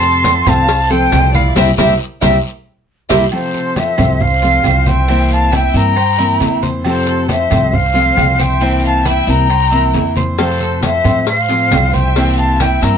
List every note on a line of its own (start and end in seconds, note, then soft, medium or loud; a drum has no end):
0.00 0.40 F2 loud
0.00 0.24 C3 medium
0.00 0.23 F3 medium
0.00 0.24 A3 medium
0.00 0.24 C4 medium
0.00 0.25 F4 medium
0.00 0.45 A4 medium
0.00 0.43 A5 loud
0.00 0.49 C6 loud
0.00 high conga soft
0.24 0.46 F3 soft
0.24 0.46 A3 medium
0.24 0.46 C4 medium
0.24 0.45 F4 medium
0.24 cowbell medium
0.24 high conga loud
0.24 low timbale medium
0.24 low agogo medium
0.24 short guiro medium
0.46 1.08 C2 loud
0.46 0.67 F3 medium
0.46 0.67 A3 medium
0.46 0.67 C4 medium
0.46 0.68 F4 medium
0.46 0.89 C5 medium
0.46 0.90 F5 medium
0.46 0.92 A5 loud
0.46 high conga soft
0.46 low conga medium
0.46 low agogo loud
0.46 short guiro medium
0.68 muted nylon-string guitar stroke medium
0.68 cowbell loud
0.68 high conga soft
0.68 long guiro medium
0.90 1.10 F3 medium
0.90 1.11 A3 medium
0.90 1.11 C4 medium
0.90 1.11 F4 medium
0.90 1.33 A4 medium
0.90 1.34 C5 medium
0.90 1.36 G5 loud
0.90 high conga soft
0.90 low agogo medium
1.11 1.53 C2 loud
1.11 1.55 F3 soft
1.11 1.55 A3 medium
1.11 1.54 C4 medium
1.11 1.56 F4 medium
1.11 cowbell medium
1.11 high conga medium
1.11 low timbale medium
1.11 low agogo loud
1.11 short guiro medium
1.33 1.55 E4 medium
1.33 1.56 D5 medium
1.33 1.56 F5 medium
1.33 high conga medium
1.33 short guiro medium
1.55 1.73 C2 loud
1.55 1.70 G3 loud
1.55 1.70 A#3 loud
1.55 1.70 C4 loud
1.55 1.70 C4 medium
1.55 1.70 E4 medium
1.55 1.70 G4 medium
1.55 1.70 A#4 loud
1.55 1.70 C5 loud
1.55 1.71 E5 loud
1.55 cowbell loud
1.55 high conga loud
1.55 high timbale loud
1.55 long guiro loud
1.78 1.95 C2 loud
1.78 1.92 G3 medium
1.78 1.92 A#3 loud
1.78 1.92 C4 loud
1.78 1.92 C4 medium
1.78 1.92 E4 loud
1.78 1.92 G4 loud
1.78 1.92 A#4 loud
1.78 1.92 C5 loud
1.78 1.92 E5 loud
1.78 1.93 E5 loud
1.78 cowbell loud
1.78 high conga loud
1.78 high timbale loud
1.78 long guiro loud
2.21 2.39 C2 loud
2.21 2.36 G3 loud
2.21 2.36 A#3 loud
2.21 2.36 C4 loud
2.21 2.36 C4 medium
2.21 2.36 E4 loud
2.21 2.36 G4 medium
2.21 2.36 A#4 loud
2.21 2.36 C5 loud
2.21 2.36 E5 medium
2.21 2.37 E5 loud
2.21 cowbell loud
2.21 high conga loud
2.21 high timbale loud
2.21 long guiro medium
3.09 3.26 C2 medium
3.09 3.24 G3 loud
3.09 3.24 A#3 medium
3.09 3.24 C4 loud
3.09 3.24 C4 medium
3.09 3.24 E4 medium
3.09 3.24 G4 medium
3.09 3.24 A#4 loud
3.09 3.24 C5 loud
3.09 3.24 E5 loud
3.09 3.25 E5 medium
3.09 cowbell loud
3.09 high conga medium
3.09 high timbale medium
3.09 long guiro loud
3.31 3.75 C3 medium
3.31 3.75 F3 medium
3.31 3.75 A3 medium
3.31 3.76 C4 medium
3.31 3.76 F4 medium
3.31 3.73 A4 medium
3.31 3.79 C5 medium
3.31 high conga soft
3.31 low agogo loud
3.31 long guiro medium
3.54 3.97 A4 medium
3.54 high conga soft
3.76 3.97 F3 medium
3.76 3.97 A3 medium
3.76 3.97 C4 medium
3.76 3.97 F4 medium
3.76 4.19 C5 medium
3.76 4.23 E5 medium
3.76 high conga loud
3.76 low timbale medium
3.76 low agogo medium
3.76 short guiro medium
3.98 4.60 C2 loud
3.98 4.19 F3 medium
3.98 4.20 A3 medium
3.98 4.19 C4 medium
3.98 4.19 F4 medium
3.98 4.41 C5 medium
3.98 high conga soft
3.98 low conga medium
3.98 low agogo loud
3.98 short guiro medium
4.20 4.86 C5 medium
4.20 4.89 F5 loud
4.20 muted nylon-string guitar stroke medium
4.20 high conga soft
4.20 low conga medium
4.20 long guiro medium
4.42 4.63 F3 medium
4.42 4.64 A3 medium
4.42 4.64 C4 medium
4.42 4.85 F4 medium
4.42 4.63 F4 medium
4.42 high conga soft
4.42 low agogo medium
4.64 5.68 C2 loud
4.64 5.07 F3 medium
4.64 5.08 A3 medium
4.64 5.08 C4 medium
4.64 5.08 F4 medium
4.64 high conga medium
4.64 low timbale medium
4.64 low agogo loud
4.64 short guiro medium
4.86 5.08 C5 medium
4.86 5.30 E5 medium
4.86 5.34 G5 loud
4.86 high conga medium
4.86 short guiro medium
5.08 5.52 C3 medium
5.08 5.51 E3 medium
5.08 5.52 A#3 medium
5.08 5.51 C4 medium
5.08 5.52 C4 medium
5.08 5.52 E4 medium
5.08 high conga soft
5.08 low agogo medium
5.08 long guiro medium
5.30 5.52 F5 medium
5.30 5.56 A5 loud
5.30 high conga soft
5.52 5.73 E3 soft
5.52 5.74 A#3 medium
5.52 5.73 C4 medium
5.52 5.95 E4 medium
5.52 5.73 E4 medium
5.52 5.74 E5 medium
5.52 5.78 G5 loud
5.52 high conga medium
5.52 low timbale medium
5.52 low agogo loud
5.52 short guiro medium
5.74 6.36 G2 loud
5.74 5.96 E3 medium
5.74 5.96 A#3 medium
5.74 5.96 C4 medium
5.74 5.95 E4 medium
5.74 6.63 G5 medium
5.74 6.64 A#5 loud
5.74 short guiro medium
5.96 6.18 C5 medium
5.96 muted nylon-string guitar stroke medium
5.96 high conga soft
5.96 low agogo loud
5.96 long guiro medium
6.18 6.40 E3 medium
6.18 6.40 A#3 medium
6.18 6.40 C4 medium
6.18 6.61 E4 medium
6.18 6.40 E4 medium
6.18 high conga soft
6.40 7.45 F2 medium
6.40 6.84 E3 medium
6.40 6.84 A#3 medium
6.40 6.85 C4 medium
6.40 6.85 E4 medium
6.40 high conga medium
6.40 low timbale medium
6.40 low agogo medium
6.40 short guiro medium
6.63 7.05 C5 medium
6.63 high conga medium
6.63 short guiro medium
6.84 7.28 C3 medium
6.84 7.27 F3 medium
6.84 7.28 A3 medium
6.84 7.29 C4 medium
6.84 7.29 F4 loud
6.84 7.25 A4 medium
6.84 7.27 C5 medium
6.84 high conga soft
6.84 low agogo loud
6.84 long guiro medium
7.07 7.50 A4 medium
7.07 high conga soft
7.28 7.50 F3 soft
7.28 7.50 A3 medium
7.28 7.50 C4 medium
7.28 7.49 F4 medium
7.28 7.70 C5 medium
7.28 7.76 E5 medium
7.28 high conga medium
7.28 low timbale medium
7.28 low agogo medium
7.28 short guiro medium
7.50 8.13 C2 loud
7.50 7.71 F3 medium
7.50 7.72 A3 medium
7.50 7.72 C4 medium
7.50 7.72 F4 medium
7.50 7.94 C5 medium
7.50 high conga soft
7.50 low conga medium
7.50 low agogo loud
7.50 short guiro medium
7.72 8.39 C5 medium
7.72 8.42 F5 loud
7.72 muted nylon-string guitar stroke medium
7.72 high conga soft
7.72 low conga medium
7.72 long guiro medium
7.94 8.15 F3 soft
7.94 8.16 A3 medium
7.94 8.16 C4 medium
7.94 8.16 F4 medium
7.94 8.38 F4 medium
7.94 high conga soft
7.94 low agogo medium
8.16 9.22 C2 loud
8.16 8.60 F3 soft
8.16 8.61 A3 soft
8.16 8.60 C4 soft
8.16 8.61 F4 medium
8.16 high conga medium
8.16 low timbale medium
8.16 low agogo loud
8.16 short guiro medium
8.39 8.61 C5 medium
8.39 8.83 E5 medium
8.39 8.84 G5 loud
8.39 high conga medium
8.39 short guiro medium
8.60 9.04 C3 medium
8.60 9.04 E3 medium
8.60 9.04 A#3 medium
8.60 9.04 C4 medium
8.60 9.05 C4 medium
8.60 9.05 E4 medium
8.60 high conga soft
8.60 low agogo medium
8.60 long guiro medium
8.84 9.04 F5 medium
8.84 9.05 A5 loud
8.84 high conga soft
9.05 9.27 E3 soft
9.05 9.27 A#3 medium
9.05 9.27 C4 medium
9.05 9.49 E4 medium
9.05 9.26 E4 medium
9.05 9.26 E5 medium
9.05 9.31 G5 loud
9.05 high conga medium
9.05 low timbale medium
9.05 low agogo loud
9.05 short guiro medium
9.27 9.90 C2 loud
9.27 9.48 E3 medium
9.27 9.49 A#3 medium
9.27 9.49 C4 medium
9.27 9.49 E4 medium
9.27 10.16 G5 medium
9.27 10.17 A#5 loud
9.27 short guiro medium
9.49 9.72 C5 medium
9.49 muted nylon-string guitar stroke medium
9.49 high conga soft
9.49 low agogo loud
9.49 long guiro medium
9.71 9.92 E3 medium
9.71 9.93 A#3 medium
9.71 9.93 C4 medium
9.71 9.93 E4 medium
9.71 10.15 E4 medium
9.71 high conga soft
9.93 10.99 F2 loud
9.93 10.37 E3 soft
9.93 10.38 A#3 soft
9.93 10.38 C4 medium
9.93 10.38 E4 medium
9.93 high conga medium
9.93 low timbale medium
9.93 low agogo medium
9.93 short guiro medium
10.16 10.60 C5 medium
10.16 high conga medium
10.16 short guiro medium
10.38 10.82 C3 medium
10.38 10.81 F3 medium
10.38 10.81 A3 medium
10.38 10.82 C4 medium
10.38 10.82 F4 loud
10.38 10.80 A4 medium
10.38 10.80 C5 medium
10.38 cowbell loud
10.38 high conga soft
10.38 low agogo loud
10.38 long guiro medium
10.61 11.04 A4 medium
10.61 high conga soft
10.82 11.04 F3 medium
10.82 11.04 A3 medium
10.82 11.04 C4 medium
10.82 11.03 F4 medium
10.82 11.24 C5 medium
10.82 11.25 E5 loud
10.82 cowbell medium
10.82 high conga loud
10.82 low timbale medium
10.82 low agogo medium
10.82 short guiro medium
11.04 11.67 A2 loud
11.04 11.26 F3 medium
11.04 11.26 A3 medium
11.04 11.26 C4 medium
11.04 11.26 F4 medium
11.04 11.48 C5 medium
11.04 high conga soft
11.04 low conga medium
11.04 low agogo loud
11.04 short guiro medium
11.27 11.89 C5 medium
11.27 11.95 F5 loud
11.27 muted nylon-string guitar stroke medium
11.27 cowbell loud
11.27 high conga soft
11.27 long guiro medium
11.49 11.70 F3 medium
11.49 11.70 A3 medium
11.49 11.71 C4 medium
11.49 11.70 F4 medium
11.49 11.92 F4 medium
11.49 high conga soft
11.49 low agogo medium
11.71 12.76 C2 loud
11.71 12.15 F3 medium
11.71 12.15 A3 medium
11.71 12.15 C4 medium
11.71 12.16 F4 medium
11.71 cowbell medium
11.71 high conga medium
11.71 low timbale loud
11.71 low agogo loud
11.71 short guiro medium
11.93 12.15 C5 medium
11.93 12.37 E5 medium
11.93 12.39 G5 loud
11.93 high conga medium
11.93 short guiro medium
12.16 12.59 C3 medium
12.16 12.59 E3 medium
12.16 12.59 A#3 medium
12.16 12.59 C4 medium
12.16 12.60 C4 medium
12.16 12.60 E4 medium
12.16 cowbell loud
12.16 high conga soft
12.16 low agogo medium
12.16 long guiro medium
12.37 12.60 F5 medium
12.37 12.61 A5 loud
12.37 high conga soft
12.59 12.81 E3 medium
12.59 12.81 A#3 medium
12.59 12.81 C4 medium
12.59 12.98 E4 medium
12.59 12.81 E4 medium
12.59 12.82 E5 medium
12.59 12.84 G5 loud
12.59 cowbell medium
12.59 high conga loud
12.59 low timbale medium
12.59 low agogo loud
12.59 short guiro medium
12.82 12.98 G2 loud
12.82 12.98 E3 medium
12.82 12.98 A#3 medium
12.82 12.98 C4 medium
12.82 12.98 E4 medium
12.82 12.98 G5 medium
12.82 12.98 A#5 loud
12.82 cowbell medium
12.82 short guiro medium